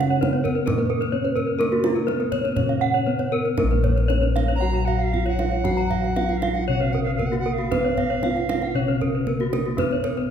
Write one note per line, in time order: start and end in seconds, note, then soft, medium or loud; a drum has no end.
0.00 0.17 C#3 medium
0.00 0.67 C#3 soft
0.00 0.22 C#4 soft
0.00 1.09 C#4 medium
0.00 0.11 F#5 soft
0.00 kendang high soft
0.10 0.22 C#5 soft
0.21 0.30 B3 soft
0.21 0.67 B3 medium
0.21 0.33 B4 soft
0.21 kendang high soft
0.21 kendang low soft
0.33 0.44 C#5 soft
0.44 0.55 A#4 soft
0.44 kendang low soft
0.55 0.67 B4 soft
0.66 2.04 A#2 medium
0.66 1.59 A#3 soft
0.66 1.13 A#3 soft
0.66 0.78 A#4 medium
0.66 kendang high soft
0.66 kendang low soft
0.78 0.90 B4 soft
0.78 kendang slap soft
0.90 1.01 A#4 soft
1.01 1.13 B4 soft
1.01 kendang slap soft
1.12 1.21 B3 soft
1.12 1.60 C#4 soft
1.12 1.24 C#5 soft
1.25 1.36 B4 soft
1.36 1.48 A#4 soft
1.36 kendang low soft
1.47 1.59 B4 soft
1.59 2.57 A#3 soft
1.59 2.08 A#3 soft
1.59 1.71 A#4 medium
1.59 3.03 A#4 medium
1.59 kendang high soft
1.72 1.84 F#4 soft
1.72 kendang slap soft
1.84 1.96 F4 soft
1.84 kendang high soft
1.95 2.07 A#4 soft
1.95 kendang slap soft
2.07 2.56 B3 soft
2.07 2.16 B3 soft
2.07 2.19 B4 soft
2.07 kendang high soft
2.20 2.32 A#4 soft
2.20 kendang slap soft
2.32 2.44 C#5 medium
2.32 kendang low soft
2.44 2.57 B4 soft
2.44 kendang slap soft
2.56 4.06 A#2 medium
2.56 3.58 C#3 soft
2.56 3.06 C#4 medium
2.56 2.69 C#5 soft
2.56 kendang low soft
2.69 2.82 F5 soft
2.69 kendang slap soft
2.81 2.94 F#5 medium
2.94 3.07 C#5 soft
2.94 kendang slap soft
3.07 3.58 B3 soft
3.07 3.15 B3 soft
3.07 3.19 B4 soft
3.19 3.32 C#5 soft
3.19 kendang slap soft
3.32 3.45 A#4 medium
3.45 3.58 B4 soft
3.45 kendang slap soft
3.58 4.61 A#3 soft
3.58 4.10 A#3 soft
3.58 3.71 A#4 soft
3.58 5.09 A#4 medium
3.58 kendang high soft
3.58 kendang low soft
3.63 6.67 A#1 loud
3.71 3.84 B4 soft
3.71 kendang slap soft
3.84 3.97 C#5 soft
3.84 kendang low soft
3.96 4.09 B4 soft
3.96 kendang slap soft
4.08 4.18 B3 soft
4.08 4.61 C#4 soft
4.08 4.22 C#5 soft
4.08 kendang high soft
4.21 4.35 B4 soft
4.21 kendang slap soft
4.36 4.48 F5 soft
4.36 kendang high soft
4.48 4.61 C#5 soft
4.48 kendang slap soft
4.55 4.87 A#5 medium
4.61 5.63 F#3 soft
4.61 5.13 F#4 soft
4.61 4.74 F#5 soft
4.74 4.87 A#5 soft
4.85 5.00 F5 soft
4.85 5.05 F#5 medium
4.85 kendang low soft
4.99 5.13 F#5 soft
5.03 5.27 F5 medium
5.13 5.21 B3 soft
5.13 5.65 F4 soft
5.13 5.26 F5 soft
5.13 kendang low soft
5.26 5.39 C#5 soft
5.26 6.39 F#5 medium
5.26 kendang slap soft
5.39 5.52 F5 soft
5.39 kendang high soft
5.51 5.65 C#5 soft
5.51 kendang slap soft
5.64 6.68 F#3 soft
5.64 7.16 F#4 medium
5.64 6.17 F#4 soft
5.64 5.77 F#5 soft
5.64 kendang high soft
5.64 kendang low soft
5.77 5.90 A#5 soft
5.77 kendang slap soft
5.91 6.04 F5 soft
5.91 kendang low soft
6.04 6.17 F#5 soft
6.04 kendang slap soft
6.16 6.25 B3 soft
6.16 6.69 F4 soft
6.16 6.29 F5 medium
6.16 kendang high soft
6.29 6.42 F#5 soft
6.29 kendang slap soft
6.37 6.55 F5 soft
6.42 6.55 F5 soft
6.42 kendang high soft
6.54 6.68 F#5 soft
6.54 kendang slap soft
6.68 8.20 B2 medium
6.68 7.71 C#3 soft
6.68 7.21 C#4 soft
6.68 6.81 C#5 soft
6.68 6.82 F#5 soft
6.80 6.94 B4 soft
6.80 6.94 F5 soft
6.92 7.07 A#4 soft
6.92 7.03 F#5 medium
6.92 kendang low soft
7.03 7.20 B4 soft
7.03 7.14 F5 soft
7.15 7.32 A#4 soft
7.15 7.28 F5 soft
7.19 7.71 A#3 soft
7.19 7.28 B3 soft
7.19 kendang low soft
7.26 7.38 F#5 soft
7.32 7.45 F#4 soft
7.32 kendang slap soft
7.39 7.55 F#5 soft
7.46 7.59 A#4 soft
7.53 8.80 F5 soft
7.58 7.71 F#4 soft
7.58 kendang slap soft
7.71 8.75 B3 soft
7.71 8.24 B3 medium
7.71 7.84 B4 soft
7.71 9.23 B4 medium
7.71 kendang high soft
7.71 kendang low soft
7.84 7.97 C#5 soft
7.84 kendang slap soft
7.97 8.11 F5 soft
7.97 kendang low soft
8.10 8.23 C#5 soft
8.10 kendang slap soft
8.23 8.31 B3 soft
8.23 8.76 F4 soft
8.23 8.36 F5 medium
8.23 kendang high soft
8.36 8.49 F#5 soft
8.36 kendang slap soft
8.49 8.62 F5 soft
8.49 kendang high soft
8.62 8.75 F#5 soft
8.62 kendang slap soft
8.74 10.26 B2 medium
8.74 9.78 C#3 soft
8.74 9.27 C#4 medium
8.74 8.88 C#5 soft
8.88 9.01 B4 soft
9.01 9.14 A#4 soft
9.01 kendang low soft
9.15 9.27 B4 soft
9.27 9.79 A#3 soft
9.27 9.35 B3 soft
9.27 9.40 A#4 soft
9.27 kendang low soft
9.40 9.53 F#4 soft
9.40 kendang slap soft
9.53 9.66 A#4 soft
9.53 kendang high soft
9.65 9.79 F#4 soft
9.65 kendang slap soft
9.77 10.31 B3 soft
9.77 10.30 B3 soft
9.77 10.31 B4 medium
9.77 9.92 B4 medium
9.77 kendang high soft
9.77 kendang low soft
9.91 10.05 C#5 soft
9.91 kendang slap soft
10.04 10.17 A#4 soft
10.04 kendang low soft
10.17 10.30 B4 soft
10.17 kendang slap soft